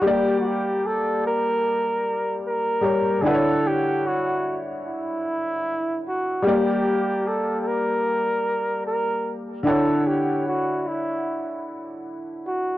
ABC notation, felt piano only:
X:1
M:4/4
L:1/8
Q:"Swing 16ths" 1/4=75
K:D
V:1 name="Felt piano"
[G,_B,Gd]6- [G,B,Gd] [G,G_Bc] | [D,DEBcf]8 | [G,_B,Gd]8 | [D,DEcf]8 |]